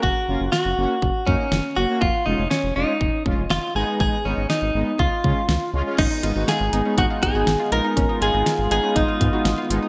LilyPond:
<<
  \new Staff \with { instrumentName = "Clean electric guitar" } { \time 4/4 \key gis \dorian \tempo 4 = 121 fis'4 fis'4. cis'4 fis'8 | eis'8 dis'8 cis'8 dis'4 r8 eis'8 gis'8 | gis'8 cis'8 dis'4 eis'4. r8 | dis'4 gis'4 fis'8 gis'4 ais'8~ |
ais'8 gis'4 gis'8 dis'4. r8 | }
  \new Staff \with { instrumentName = "Synth pluck" } { \time 4/4 \key gis \dorian r1 | r1 | r1 | cis'16 dis'16 eis'16 dis'16 eis'8 dis'16 cis'16 dis'16 eis'8 fis'8 eis'16 eis'16 dis'16 |
cis'16 dis'16 eis'16 dis'16 eis'8 dis'16 cis'16 dis'16 eis'8 fis'8 eis'16 eis'16 dis'16 | }
  \new Staff \with { instrumentName = "Analog synth pad" } { \time 4/4 \key gis \dorian << { r1 | r1 | r1 | dis'1 |
eis'1 | } \\ { r1 | r1 | r1 | <gis b>1~ |
<gis b>1 | } >> }
  \new Staff \with { instrumentName = "Analog polysynth" } { \time 4/4 \key gis \dorian r8 <ais cis' eis'>16 r8. <ais cis' fis'>16 r8. <ais cis' dis'>16 r8. <ais cis' fis'>16 <ais cis' fis'>16 | r8 <gis cis' eis'>16 r8. <gis cis' eis'>16 r8. <gis cis' eis'>16 r8. <gis b dis'>8~ | <gis b dis'>16 r16 <gis b dis'>16 r8. <gis b dis'>16 r8. <gis cis' eis'>16 r8. <gis cis' eis'>16 <gis cis' eis'>16 | r8 <gis b dis'>16 <gis b fis'>16 r8 <gis b dis'>16 <gis b dis'>16 r8 <gis b dis'>16 <gis b dis'>16 r8 <gis b dis'>16 <gis b dis'>16 |
r8 <gis b dis'>16 <gis b dis'>16 r8 <gis b dis'>16 <gis b dis'>16 r8 <gis b eis'>16 <gis b dis'>16 r8 <gis b dis'>16 <gis dis'>16 | }
  \new Staff \with { instrumentName = "Analog synth bass" } { \clef bass \time 4/4 \key gis \dorian fis,,16 r16 fis,,16 fis,,16 r16 fis,,16 fis,,16 r16 fis,,16 r16 fis,16 r16 fis,,16 r16 fis,,16 r16 | eis,,16 r16 eis,,16 eis,,16 r16 eis,,16 eis,,16 r16 eis,,16 r16 eis,,16 eis,,16 eis,,16 r16 gis,,16 r16 | gis,,16 r16 gis,,16 gis,,16 r16 gis,,16 gis,,16 r16 cis,16 r16 cis16 r16 cis,16 r16 cis,16 r16 | gis,,16 r16 gis,,16 gis,,16 r16 gis,,16 gis,,16 r16 gis,,16 r16 gis,,16 gis,,16 gis,,16 r16 ais,,16 r16 |
gis,,16 r16 gis,,16 gis,,16 r16 gis,,16 gis,,16 r16 gis,,16 r16 gis,16 r16 gis,,16 r16 gis,,16 r16 | }
  \new DrumStaff \with { instrumentName = "Drums" } \drummode { \time 4/4 bd4 sn4 bd8 bd8 sn4 | bd4 sn4 bd8 bd8 sn4 | bd4 sn4 bd8 bd8 sn4 | <cymc hh bd>8 hh8 <hh sn>8 hh8 <hh bd>8 <hh bd>8 <hh sn>8 hh8 |
<hh bd>8 hh8 <hh sn>8 hh8 <hh bd>8 <hh bd>8 <hh sn>8 hh8 | }
>>